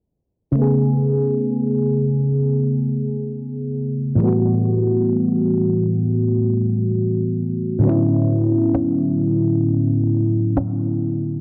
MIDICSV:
0, 0, Header, 1, 3, 480
1, 0, Start_track
1, 0, Key_signature, 3, "major"
1, 0, Tempo, 909091
1, 296, Time_signature, 4, 2, 24, 8
1, 6022, End_track
2, 0, Start_track
2, 0, Title_t, "FM electric piano"
2, 0, Program_c, 0, 5
2, 274, Note_on_c, 0, 49, 69
2, 290, Note_on_c, 0, 57, 62
2, 308, Note_on_c, 0, 59, 57
2, 325, Note_on_c, 0, 68, 72
2, 387, Control_c, 0, 64, 127
2, 2183, Note_off_c, 0, 49, 0
2, 2192, Note_off_c, 0, 57, 0
2, 2193, Note_on_c, 0, 45, 67
2, 2201, Note_off_c, 0, 59, 0
2, 2203, Note_on_c, 0, 52, 62
2, 2209, Note_off_c, 0, 68, 0
2, 2214, Note_on_c, 0, 55, 62
2, 2223, Control_c, 0, 64, 0
2, 2224, Note_on_c, 0, 57, 63
2, 2234, Note_on_c, 0, 59, 61
2, 2245, Note_on_c, 0, 66, 73
2, 2320, Control_c, 0, 64, 127
2, 4103, Note_off_c, 0, 45, 0
2, 4108, Note_off_c, 0, 52, 0
2, 4113, Note_on_c, 0, 45, 69
2, 4114, Note_off_c, 0, 55, 0
2, 4119, Note_off_c, 0, 57, 0
2, 4123, Note_on_c, 0, 50, 64
2, 4124, Note_off_c, 0, 59, 0
2, 4129, Note_off_c, 0, 66, 0
2, 4133, Note_on_c, 0, 54, 65
2, 4142, Control_c, 0, 64, 0
2, 4143, Note_on_c, 0, 59, 59
2, 4154, Note_on_c, 0, 61, 60
2, 4164, Note_on_c, 0, 64, 76
2, 4232, Control_c, 0, 64, 127
2, 6022, Note_off_c, 0, 45, 0
2, 6022, Note_off_c, 0, 50, 0
2, 6022, Note_off_c, 0, 54, 0
2, 6022, Note_off_c, 0, 59, 0
2, 6022, Note_off_c, 0, 61, 0
2, 6022, Note_off_c, 0, 64, 0
2, 6022, End_track
3, 0, Start_track
3, 0, Title_t, "Cajon"
3, 4617, Note_on_c, 9, 38, 95
3, 4669, Note_off_c, 9, 38, 0
3, 5580, Note_on_c, 9, 38, 111
3, 5632, Note_off_c, 9, 38, 0
3, 6022, End_track
0, 0, End_of_file